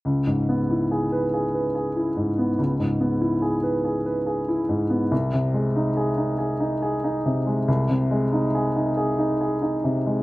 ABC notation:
X:1
M:3/4
L:1/16
Q:1/4=70
K:G#phr
V:1 name="Grand piano"
C,, G,, B, E G B G B G E G,, B, | C,, G,, B, E G B G B G E G,, B, | ^B,,, ^B,, G, D G D G D G D B,, G, | ^B,,, ^B,, G, D G D G D G D B,, G, |]